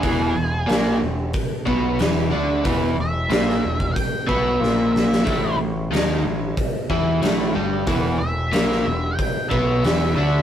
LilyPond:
<<
  \new Staff \with { instrumentName = "Lead electric guitar" } { \time 4/4 \key a \major \tempo 4 = 92 gis'4. r2 r8 | r8 e''4. g''8 e''4 e''8~ | e''8 r2. r8 | r8 e''4. g''8 e''4 e''8 | }
  \new Staff \with { instrumentName = "Overdriven electric guitar" } { \clef bass \time 4/4 \key a \major <e, e>8 e,8 <ais, ais>8 e,8 r8 <b, b>8 <e, e>8 <d d'>8 | <e, e>8 e,8 <ais, ais>8 e,8 r8 <b, b>8 <ais, ais>4 | <a, a>8 a,8 <dis dis'>8 a,8 r8 <e e'>8 <a, a>8 <g, g>8 | <e, e>8 e,8 <ais, ais>8 e,8 r8 <b, b>8 <e, e>8 <d d'>8 | }
  \new Staff \with { instrumentName = "Picked electric bass" } { \clef bass \time 4/4 \key a \major e,,8 e,,8 ais,,8 e,,8 r8 b,,8 e,,8 d,8 | e,,8 e,,8 ais,,8 e,,8 r8 b,,8 ais,,4 | a,,8 a,,8 dis,8 a,,8 r8 e,8 a,,8 g,,8 | e,,8 e,,8 ais,,8 e,,8 r8 b,,8 e,,8 d,8 | }
  \new DrumStaff \with { instrumentName = "Drums" } \drummode { \time 4/4 <hho bd>4 <hho sn>4 <hho bd>8 bd8 <hho sn>4 | <hho bd>4 <hho sn>16 sn8 bd16 <hho bd>8 bd8 sn8 sn16 sn16 | <hho bd>4 <hho sn>4 <hho bd>8 bd8 <hho sn>4 | <hho bd>4 <hho sn>16 sn8. <hho bd>8 bd8 <hho sn>4 | }
>>